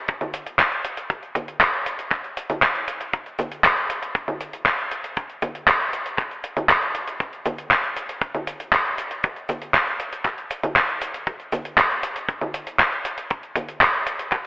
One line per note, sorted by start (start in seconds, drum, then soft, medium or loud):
0.08 kick loud
0.08 closed hi-hat soft
0.08 cabasa soft
0.21 closed hi-hat soft
0.21 high conga medium
0.21 cabasa soft
0.34 closed hi-hat medium
0.34 cabasa medium
0.46 closed hi-hat medium
0.46 cabasa soft
0.59 kick loud
0.59 clap loud
0.59 closed hi-hat medium
0.59 cabasa soft
0.72 closed hi-hat soft
0.72 cabasa soft
0.85 closed hi-hat medium
0.85 cabasa medium
0.97 closed hi-hat medium
0.97 cabasa soft
1.10 kick loud
1.10 closed hi-hat medium
1.10 cabasa soft
1.23 closed hi-hat soft
1.23 cabasa soft
1.35 kick medium
1.35 closed hi-hat medium
1.35 high conga medium
1.35 cabasa medium
1.48 closed hi-hat medium
1.48 cabasa soft
1.61 kick loud
1.61 clap loud
1.61 closed hi-hat medium
1.61 cabasa soft
1.74 closed hi-hat soft
1.74 cabasa soft
1.86 closed hi-hat medium
1.86 cabasa medium
1.99 closed hi-hat medium
1.99 cabasa soft
2.11 kick loud
2.11 clap soft
2.11 closed hi-hat soft
2.11 cabasa soft
2.24 closed hi-hat soft
2.24 cabasa soft
2.37 closed hi-hat medium
2.37 cabasa medium
2.50 closed hi-hat medium
2.50 high conga medium
2.50 cabasa soft
2.62 kick loud
2.62 clap loud
2.62 closed hi-hat medium
2.62 cabasa soft
2.75 closed hi-hat soft
2.75 cabasa soft
2.88 closed hi-hat medium
2.88 cabasa medium
3.01 closed hi-hat medium
3.01 cabasa soft
3.13 kick loud
3.13 closed hi-hat soft
3.13 cabasa soft
3.26 closed hi-hat soft
3.26 cabasa soft
3.39 closed hi-hat medium
3.39 high conga medium
3.39 cabasa medium
3.52 closed hi-hat soft
3.52 cabasa soft
3.64 kick loud
3.64 clap loud
3.64 closed hi-hat soft
3.64 cabasa soft
3.77 closed hi-hat soft
3.77 cabasa soft
3.90 closed hi-hat medium
3.90 cabasa medium
4.03 closed hi-hat soft
4.03 cabasa soft
4.15 kick loud
4.15 closed hi-hat soft
4.15 cabasa soft
4.28 closed hi-hat soft
4.28 high conga medium
4.28 cabasa soft
4.41 closed hi-hat medium
4.41 cabasa medium
4.53 closed hi-hat soft
4.53 cabasa soft
4.66 kick loud
4.66 clap loud
4.66 closed hi-hat soft
4.66 cabasa soft
4.79 closed hi-hat soft
4.79 cabasa soft
4.91 closed hi-hat medium
4.91 cabasa medium
5.04 closed hi-hat soft
5.04 cabasa soft
5.17 kick loud
5.17 closed hi-hat soft
5.17 cabasa soft
5.30 closed hi-hat soft
5.30 cabasa soft
5.42 kick medium
5.42 closed hi-hat medium
5.42 high conga medium
5.42 cabasa medium
5.55 closed hi-hat soft
5.55 cabasa soft
5.68 kick loud
5.68 clap loud
5.68 closed hi-hat soft
5.80 closed hi-hat soft
5.80 cabasa soft
5.93 closed hi-hat medium
5.93 cabasa medium
6.06 closed hi-hat soft
6.06 cabasa soft
6.18 kick loud
6.18 clap soft
6.18 closed hi-hat soft
6.18 cabasa soft
6.31 closed hi-hat soft
6.31 cabasa soft
6.44 closed hi-hat medium
6.44 cabasa medium
6.57 closed hi-hat soft
6.57 high conga medium
6.57 cabasa soft
6.69 kick loud
6.69 clap loud
6.69 closed hi-hat soft
6.69 cabasa soft
6.82 closed hi-hat soft
6.82 cabasa soft
6.95 closed hi-hat medium
6.95 cabasa medium
7.07 closed hi-hat soft
7.07 cabasa soft
7.20 kick loud
7.20 closed hi-hat soft
7.20 cabasa soft
7.33 closed hi-hat soft
7.33 cabasa soft
7.46 closed hi-hat medium
7.46 high conga medium
7.46 cabasa medium
7.58 closed hi-hat soft
7.58 cabasa soft
7.71 kick loud
7.71 clap loud
7.71 closed hi-hat soft
7.71 cabasa soft
7.84 closed hi-hat soft
7.84 cabasa soft
7.96 closed hi-hat medium
7.96 cabasa medium
8.09 closed hi-hat soft
8.09 cabasa soft
8.22 kick loud
8.22 closed hi-hat soft
8.22 cabasa soft
8.35 closed hi-hat soft
8.35 high conga medium
8.35 cabasa soft
8.47 closed hi-hat medium
8.47 cabasa medium
8.60 closed hi-hat soft
8.60 cabasa soft
8.72 kick loud
8.72 clap loud
8.72 closed hi-hat soft
8.72 cabasa soft
8.85 closed hi-hat soft
8.85 cabasa soft
8.98 closed hi-hat medium
8.98 cabasa medium
9.11 closed hi-hat soft
9.11 cabasa soft
9.24 kick loud
9.24 closed hi-hat medium
9.24 cabasa soft
9.36 closed hi-hat soft
9.36 cabasa soft
9.49 kick medium
9.49 closed hi-hat medium
9.49 high conga medium
9.49 cabasa medium
9.62 closed hi-hat soft
9.62 cabasa soft
9.74 kick loud
9.74 clap loud
9.74 closed hi-hat medium
9.74 cabasa soft
9.87 closed hi-hat soft
9.87 cabasa soft
10.00 closed hi-hat medium
10.00 cabasa medium
10.13 closed hi-hat medium
10.13 cabasa soft
10.25 kick loud
10.25 clap soft
10.25 closed hi-hat soft
10.25 cabasa soft
10.38 closed hi-hat soft
10.38 cabasa soft
10.51 closed hi-hat medium
10.51 cabasa medium
10.63 closed hi-hat medium
10.63 high conga medium
10.63 cabasa soft
10.76 kick loud
10.76 clap loud
10.76 closed hi-hat soft
10.76 cabasa soft
10.89 closed hi-hat soft
10.89 cabasa soft
11.02 closed hi-hat medium
11.02 cabasa medium
11.14 closed hi-hat medium
11.14 cabasa soft
11.27 kick loud
11.27 closed hi-hat medium
11.27 cabasa soft
11.40 closed hi-hat soft
11.40 cabasa soft
11.52 closed hi-hat medium
11.52 high conga medium
11.52 cabasa medium
11.65 closed hi-hat medium
11.65 cabasa soft
11.78 kick loud
11.78 clap loud
11.78 closed hi-hat medium
11.78 cabasa soft
11.90 closed hi-hat soft
11.90 cabasa soft
12.03 closed hi-hat medium
12.03 cabasa medium
12.16 closed hi-hat medium
12.16 cabasa soft
12.29 kick loud
12.29 closed hi-hat soft
12.29 cabasa soft
12.41 closed hi-hat soft
12.41 high conga medium
12.41 cabasa soft
12.54 closed hi-hat medium
12.54 cabasa medium
12.67 closed hi-hat medium
12.67 cabasa soft
12.80 kick loud
12.80 clap loud
12.80 closed hi-hat medium
12.80 cabasa soft
12.92 closed hi-hat soft
12.92 cabasa soft
13.05 closed hi-hat medium
13.05 cabasa medium
13.18 closed hi-hat medium
13.18 cabasa soft
13.30 kick loud
13.30 closed hi-hat medium
13.30 cabasa soft
13.43 closed hi-hat soft
13.43 cabasa soft
13.56 kick medium
13.56 closed hi-hat medium
13.56 high conga medium
13.56 cabasa medium
13.68 closed hi-hat medium
13.68 cabasa soft
13.81 kick loud
13.81 clap loud
13.81 closed hi-hat medium
13.81 cabasa soft
13.94 closed hi-hat soft
13.94 cabasa soft
14.07 closed hi-hat medium
14.07 cabasa medium
14.19 closed hi-hat medium
14.19 cabasa soft
14.32 kick loud
14.32 clap soft
14.32 closed hi-hat medium
14.32 cabasa soft